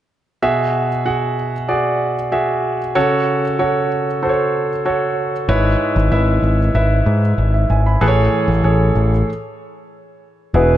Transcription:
0.42 1.33 B2 soft
0.42 0.89 F#4 medium
0.42 0.88 G#4 medium
0.42 0.88 E5 medium
1.05 1.52 F#4 medium
1.05 1.52 G#4 medium
1.05 1.52 F#5 medium
1.68 2.15 F#4 medium
1.68 2.15 G#4 medium
1.68 2.15 D5 medium
2.32 2.78 F#4 medium
2.32 2.78 G#4 medium
2.32 2.78 E5 medium
2.95 3.86 C#3 medium
2.95 3.42 F#4 medium
2.95 3.42 A4 medium
2.95 3.41 C#5 medium
3.59 4.05 F#4 medium
3.59 4.05 A4 medium
3.59 4.05 C#5 medium
4.23 4.68 F#4 medium
4.23 4.68 A4 medium
4.23 4.29 C5 medium
4.29 4.72 C#5 medium
4.85 5.31 F#4 medium
4.85 5.32 A4 medium
4.85 5.32 C#5 medium
5.49 5.74 G#1 medium
5.49 6.40 G#2 medium
5.49 6.39 G#3 medium
5.49 5.95 E4 medium
5.49 5.95 B4 medium
5.49 5.95 C#5 medium
5.96 6.09 G#1 medium
6.12 6.38 G#1 medium
6.12 6.58 E4 medium
6.12 6.58 B4 medium
6.12 6.58 E5 medium
6.42 6.69 G#1 medium
6.75 7.01 G#1 medium
6.75 7.21 E4 medium
6.75 7.21 B4 medium
6.75 7.21 E5 medium
7.06 7.32 G#2 medium
7.38 7.64 G#1 medium
7.54 7.69 E5 soft
7.70 7.96 G#1 medium
7.70 7.85 G#5 medium
7.86 8.16 B5 soft
8.01 8.27 A1 medium
8.01 8.92 A2 medium
8.01 8.92 E3 medium
8.01 8.47 G#4 medium
8.01 8.48 A4 medium
8.01 8.08 B4 medium
8.08 8.51 C#5 medium
8.48 8.61 A1 medium
8.64 8.90 A1 medium
8.64 9.11 G#4 medium
8.64 9.11 A4 medium
8.64 9.11 C#5 medium
8.95 9.22 A1 medium
10.54 10.77 E1 medium
10.54 10.77 B2 medium
10.54 10.77 E4 medium
10.54 10.77 F#4 medium
10.54 10.77 G#4 medium
10.54 10.77 B4 medium

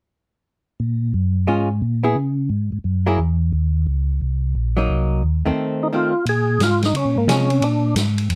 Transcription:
0.80 1.13 A#2 medium
1.14 1.47 F#2 medium
1.47 1.81 G#2 medium
1.47 1.68 G#3 medium
1.47 1.68 C#4 soft
1.47 1.68 F4 soft
1.82 2.15 A#2 medium
2.04 2.15 B3 soft
2.04 2.15 E4 soft
2.04 2.16 G#4 medium
2.15 2.49 C#3 medium
2.49 2.70 G#2 medium
2.72 2.79 G#2 soft
2.84 3.18 F#2 medium
3.06 3.18 F#3 soft
3.06 3.18 A#3 medium
3.06 3.18 E4 medium
3.06 3.18 G#4 medium
3.18 3.52 E2 medium
3.52 3.86 D#2 medium
3.87 4.20 C#2 medium
4.21 4.55 C2 medium
4.55 4.88 A#1 medium
4.77 5.21 F#3 medium
4.77 5.22 A#3 soft
4.77 5.22 D#4 medium
4.89 5.23 C2 medium
5.23 5.44 D#2 medium
5.45 5.52 D#2 soft
5.45 5.90 D#3 soft
5.45 5.90 A3 medium
5.45 5.90 C4 medium
5.83 5.88 D#4 medium
5.93 6.12 D#3 medium
5.93 6.12 A3 soft
5.93 6.13 C4 medium
5.93 6.25 F4 medium
6.25 6.59 A#2 medium
6.25 6.63 G#4 medium
6.25 ride soft
6.60 6.93 G#2 medium
6.60 6.82 F4 medium
6.60 snare medium
6.60 hi-hat pedal soft
6.60 ride medium
6.82 6.95 D#4 medium
6.82 snare soft
6.82 ride soft
6.93 7.05 C#3 medium
6.93 7.18 C#4 medium
6.93 ride medium
7.05 7.17 A#2 soft
7.16 7.27 G#2 medium
7.16 7.29 A#3 medium
7.27 7.61 C3 medium
7.27 7.48 F3 soft
7.27 7.48 G#3 soft
7.27 7.48 C#4 medium
7.27 7.64 C#4 medium
7.27 snare medium
7.27 hi-hat pedal medium
7.27 ride medium
7.50 ride soft
7.61 7.95 A#2 medium
7.61 7.95 D4 medium
7.61 ride medium
7.96 8.29 G#2 medium
7.96 snare medium
7.96 hi-hat pedal soft
7.96 ride medium
8.18 ride soft
8.29 8.35 F2 medium
8.29 ride medium

